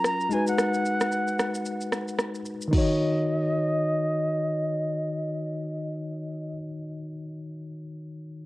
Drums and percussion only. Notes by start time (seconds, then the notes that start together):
0.04 cross-stick, shaker
0.21 shaker
0.31 shaker
0.47 shaker
0.58 cross-stick, shaker
0.74 shaker
0.85 shaker
1.01 cross-stick, shaker
1.12 shaker
1.28 shaker
1.39 cross-stick, shaker
1.55 shaker
1.66 shaker
1.81 shaker
1.92 cross-stick, shaker
2.08 shaker
2.19 cross-stick, shaker
2.35 shaker
2.45 shaker
2.61 shaker
2.73 kick, crash